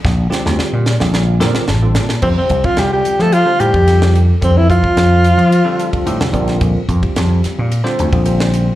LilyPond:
<<
  \new Staff \with { instrumentName = "Alto saxophone" } { \time 4/4 \key f \major \tempo 4 = 110 r1 | c'16 c'8 f'16 g'16 g'8 a'16 f'8 g'4 r8 | c'16 e'16 f'2. r8 | r1 | }
  \new Staff \with { instrumentName = "Tine electric piano" } { \time 4/4 \key f \major << { r4. d''8 f''4 a''4 | r1 | r2 r8 a''8 g''8 d''8 | r1 | } \\ { r8 <d g c' f' g'>4 r16 <d g c' f' a'>8. <d g c' f' bes'>8 <f' a'>16 <d g c' f' a'>8 <f' g'>16 | <d g c' f' a'>8 <f' a'>16 <d g c' f' a'>4~ <d g c' f' a'>16 r16 <d g c' f' c''>8 <d g c' f' a'>16 <d g c' f' a'>8. r16 | <d g c' f' a'>8 <f' g'>16 <d g c' f' a'>4~ <d g c' f' a'>16 r16 <d g c' f' a'>8 <d g c' f' a'>16 <d g c' f' a'>8 <d g c' f' bes'>8~ | <d g c' f' bes'>16 r16 <f' bes'>16 <d g c' f' g'>4~ <d g c' f' g'>16 r16 <d g c' f' c''>8 <d g c' f' c''>16 <d g c' f' c''>8. r16 | } >> }
  \new Staff \with { instrumentName = "Trombone" } { \clef bass \time 4/4 \key f \major r1 | c16 c8 f16 g16 g8 a16 f8 g4 r8 | c16 e16 f2. r8 | r1 | }
  \new Staff \with { instrumentName = "Slap bass" } { \clef bass \time 4/4 \key f \major bes,,8 r16 d,16 r16 bes,8 bes,,8. bes,16 r16 a,,8 bes,8 | f,16 r16 c,16 r16 c,8 r16 f8 r16 a,16 f,4~ f,16 | f,8 f,16 r16 f,8. f8 r8. a,16 c,16 bes,,8 | bes,,16 r16 f,16 r16 f,8 r16 bes,8 r16 d,16 bes,,4~ bes,,16 | }
  \new DrumStaff \with { instrumentName = "Drums" } \drummode { \time 4/4 <bd sn>8 <hhp sn>16 sn16 sn8 <hhp sn>16 sn16 sn8 <hhp sn>16 sn16 sn8 <hhp sn>16 sn16 | <cymc bd>8 <hhp bd cymr>16 <bd cymr>16 <hhp cymr sn>8 <hhp cymr>16 sn16 <hhp cymr>8 <hhp cymr>16 <bd cymr>16 <hhp cymr sn>16 sn16 <hhp cymr>8 | <hhp bd cymr>8 <hhp bd cymr>16 bd16 <hhp cymr sn>8 <hhp cymr>16 cymr16 <hhp cymr>8 <hhp cymr>16 <bd cymr>16 <hhp cymr>16 sn16 <hhp bd cymr>16 <cymr sn>16 | <hhp bd cymr>8 <hhp bd cymr>16 <bd cymr>16 <hhp cymr sn>8 <hhp cymr sn>8 <hhp cymr>16 sn16 <hhp cymr>16 <bd cymr>16 <hhp cymr>16 sn16 <hhp cymr>8 | }
>>